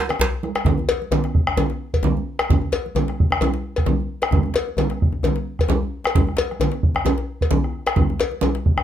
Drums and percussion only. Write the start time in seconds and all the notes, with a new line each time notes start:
0.09 bombo rim, cowbell, djembe slap, low conga
0.20 bombo rim, djembe slap, djembe tone, high conga, djembe bass
0.21 djembe slap
0.33 high conga
0.43 bombo rim, high conga
0.55 bombo rim, cowbell, djembe slap
0.65 bombo low, high conga, djembe bass, low conga
0.78 djembe slap, djembe tone, high conga
0.89 cowbell, djembe slap
1.00 djembe slap, high conga
1.11 bombo rim, cowbell, djembe slap, high conga, djembe bass, low conga
1.24 bombo rim, djembe slap
1.35 bombo low
1.47 bombo rim, djembe tone
1.57 cowbell, high conga, djembe bass, low conga
1.70 djembe slap
1.94 bombo low, cowbell
2.03 djembe slap, djembe tone, high conga, djembe bass, low conga
2.17 djembe slap, high conga
2.39 bombo rim, cowbell, djembe slap, high conga
2.50 bombo low, high conga, djembe bass, low conga
2.61 djembe slap, djembe tone
2.72 cowbell, djembe slap
2.85 djembe slap, high conga
2.95 bombo rim, cowbell, djembe slap, high conga, djembe bass, low conga
3.08 bombo rim, djembe slap
3.20 bombo low
3.30 bombo rim, djembe tone
3.41 cowbell, high conga, djembe bass, low conga
3.54 djembe slap
3.76 bombo rim, bombo low, cowbell
3.86 djembe slap, djembe tone, high conga, djembe bass, low conga
3.98 djembe slap, high conga
4.22 bombo rim, cowbell, djembe slap, high conga
4.31 bombo low, high conga, djembe bass, low conga
4.43 djembe slap, djembe tone, high conga
4.54 cowbell, djembe slap
4.68 djembe slap, high conga
4.77 bombo rim, cowbell, djembe slap, high conga, djembe bass, low conga
4.90 bombo rim, djembe slap
5.02 bombo low
5.12 djembe tone
5.23 cowbell, high conga, djembe bass, low conga
5.36 djembe slap
5.59 bombo rim, bombo low, cowbell
5.69 djembe slap, djembe tone, high conga, djembe bass, low conga
5.81 djembe slap, high conga
6.04 bombo rim, cowbell, djembe slap, high conga
6.15 bombo rim, bombo low, djembe slap, high conga, djembe bass, low conga
6.27 bombo rim, djembe tone
6.37 cowbell, djembe slap
6.51 bombo rim, high conga
6.60 bombo rim, cowbell, high conga, djembe bass, low conga
6.72 djembe slap, high conga
6.83 bombo low
6.95 bombo rim, djembe slap, djembe tone
7.05 cowbell, high conga, djembe bass, low conga
7.18 djembe slap, high conga
7.41 bombo low, cowbell
7.51 djembe slap, high conga, djembe tone, low conga, djembe bass
7.64 bombo rim
7.86 bombo rim, cowbell, djembe slap
7.96 bombo low, high conga, low conga, djembe bass
8.09 djembe slap, high conga, djembe tone
8.19 cowbell, djembe slap
8.31 djembe slap, high conga
8.41 bombo rim, cowbell, djembe slap, high conga, low conga, djembe bass
8.55 djembe slap
8.66 bombo low
8.77 bombo rim, djembe tone